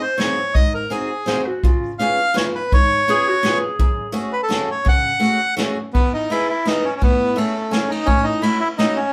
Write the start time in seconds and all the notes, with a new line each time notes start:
0.02 C5
0.18 C4 D#4 F#4 G#4 C#5, snare, closed hi-hat
0.54 G#2 D#5, kick, closed hi-hat
0.74 A#4
0.90 C4 D#4 F#4 G#4, closed hi-hat
1.26 C4 D#4 F#4 G#4 C5, snare, closed hi-hat
1.46 F#4
1.63 C#3 F4, kick, closed hi-hat
1.99 B3 C#4 F4 G#4 F5, closed hi-hat
2.34 B3 C#4 F4 G#4 C#5, snare, closed hi-hat
2.55 B4
2.72 G#2 C#5, kick, closed hi-hat
3.08 B3 C#4 F4 G#4, closed hi-hat
3.29 F#4
3.43 B3 C#4 F4 G#4, snare, closed hi-hat
3.79 F#2, kick, closed hi-hat
4.12 A3 C#4 F#4 G#4, closed hi-hat
4.33 B4
4.43 A4
4.49 A3 C#4 F#4 G#4, snare, closed hi-hat
4.71 C#5
4.85 C#3 F#5, kick, closed hi-hat
5.20 A3 C#4 F#4 G#4, closed hi-hat
5.57 A3 C#4 F#4 G#4, snare, closed hi-hat
5.93 E2 B3, kick, ride
6.14 D#4
6.30 B3 D#4 E4 G#4, ride
6.49 E4
6.66 B3 D#4 E4 G#4, snare, ride
6.84 C#4
6.96 C#4
7.02 A2 B3, kick, ride
7.36 A3 C#4 E4 G#4, ride
7.71 A3 C#4 E4 G#4, snare, ride
7.89 D#4, ride
8.06 A2 C#4, kick, ride
8.24 D#4
8.42 A3 C#4 E4 F#4, ride
8.60 E4
8.78 A3 C#4 D#4 E4 F#4, snare, ride
8.96 C#4